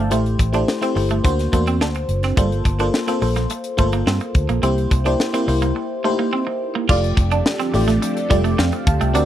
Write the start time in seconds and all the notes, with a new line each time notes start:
Already playing: G1 F3 D4 E4 C5 D5 E5 F5 G5 A5
0.10 A1 A3 E4 G4 C5, closed hi-hat
0.26 closed hi-hat
0.39 A1, muted clean electric guitar stroke, kick, closed hi-hat
0.52 A3 D4 E4 G4 C5, closed hi-hat
0.68 snare
0.81 A3 C4 E4 G4 C5, snare, closed hi-hat
0.95 G1 A3 E4 G4 C5, muted clean electric guitar stroke, open hi-hat
1.10 A3, closed hi-hat
1.24 D2 A#3 D4 F#4 C5, muted clean electric guitar stroke, kick, closed hi-hat
1.39 snare, closed hi-hat
1.52 E2 A3 A#3 D4 F#4 C5, kick, closed hi-hat
1.67 C4, closed hi-hat
1.80 D2 D4, snare
1.95 muted clean electric guitar stroke, closed hi-hat
2.09 F#1, closed hi-hat
2.23 C4, snare, closed hi-hat
2.37 G1 G3 A#3 F4 A4 C5, kick, closed hi-hat
2.52 closed hi-hat
2.65 G1, muted clean electric guitar stroke, kick, closed hi-hat
2.79 A#3 D4 F4 A4 C5, closed hi-hat
2.94 snare
3.07 A#3 C4 F4 A4 C5, snare, closed hi-hat
3.21 A#1 A#3 F4 A4 C5, muted clean electric guitar stroke, open hi-hat
3.36 A#3, snare, closed hi-hat
3.50 muted clean electric guitar stroke, closed hi-hat
3.64 closed hi-hat
3.77 G1 A3 A#3 F4 A4 C5, kick, closed hi-hat
3.92 A#3, closed hi-hat
4.07 G2 C4, snare
4.20 muted clean electric guitar stroke, closed hi-hat
4.35 D2, kick, closed hi-hat
4.49 A#1 A#3, closed hi-hat
4.62 C2 A#3 C4 E4 G4 C5, closed hi-hat
4.78 closed hi-hat
4.91 C2, muted clean electric guitar stroke, kick, closed hi-hat
5.05 A#3 D4 E4 G4 C5, closed hi-hat
5.20 snare
5.33 A#3 C4 E4 G4 C5, snare, closed hi-hat
5.47 C2 A#3 E4 G4 C5, muted clean electric guitar stroke, open hi-hat
5.62 A#3, closed hi-hat
5.76 muted clean electric guitar stroke
6.04 A3 A#3 D#4 G4 C5
6.11 E4
6.19 A#3
6.33 C4
6.47 muted clean electric guitar stroke
6.75 A#3
6.89 F1 F3 A3 C4 D4 F4 G4 A4 D5, kick, crash
7.04 closed hi-hat
7.17 F1, muted clean electric guitar stroke, kick, closed hi-hat
7.31 D4, closed hi-hat
7.46 snare
7.59 C4, snare, closed hi-hat
7.74 A1 A3 F4 G4 D5, muted clean electric guitar stroke, open hi-hat
7.88 A3, snare, closed hi-hat
8.02 muted clean electric guitar stroke, closed hi-hat
8.17 closed hi-hat
8.29 F1 G3 A3 F4 G4 D5, kick, closed hi-hat
8.44 A3, closed hi-hat
8.58 F2 C4 D5 F5, snare
8.72 muted clean electric guitar stroke, closed hi-hat
8.87 D2 F5 A5, kick, closed hi-hat
9.00 C2 A3 E5 G5, closed hi-hat
9.14 D2 D3 A#3 C4 D4 F#4 A#4 D5 F5, closed hi-hat